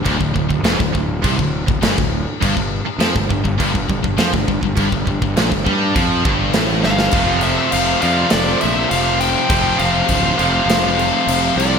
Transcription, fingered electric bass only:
X:1
M:4/4
L:1/16
Q:1/4=102
K:F
V:1 name="Fingered electric bass" clef=bass
D,,, D,,, D,,, D,,, F,,, D,,, D,,,2 C,, D,,,2 D,,, G,,, D,,,2 z | G,,, G,,,2 z F,, G,,, G,,, G,,, G,,, G,,, G,,, G,,, F,, G,,, G,,, G,,, | G,,, G,,, G,,, G,,, B,,, G,,, G,,2 F,,2 G,,,2 A,,,2 G,,,2 | F,,,4 F,,,2 F,,2 F,,,2 B,,,2 F,,,4 |
F,,,2 F,,,2 D,,,2 F,,,2 F,,,4 F,,,2 C,,2 |]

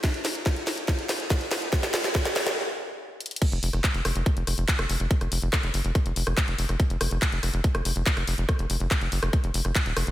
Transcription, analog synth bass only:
X:1
M:4/4
L:1/16
Q:1/4=142
K:none
V:1 name="Analog synth bass" clef=bass
z16 | z16 | z F,,, F,,, F,,, z F,,, F,,, F,,, z F,,, F,,, F,,, z F,,, F,,, F,,, | z F,,, F,,, F,,, z F,,, _G,,, F,,, z F,,, F,,, F,,, z F,,, F,,, F,,, |
z F,,, F,,, F,,, z F,,, F,,, F,,, z F,,, F,,, F,,, z F,,, F,,, F,,, | z F,,, F,,, F,,, z F,,, _G,,, F,,, z F,,, F,,, F,,, z _E,,, F,,, F,,, |]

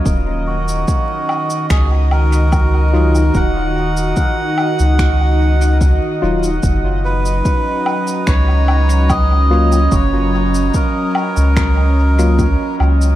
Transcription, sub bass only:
X:1
M:4/4
L:1/16
Q:1/4=73
K:Ebm
V:1 name="Sub bass" clef=bass
E,,,4 z4 D,,8 | E,,,4 z3 D,,6 z E,,,2 | G,,,4 z4 D,,8 | G,,,4 z3 D,,6 z D,,2 |]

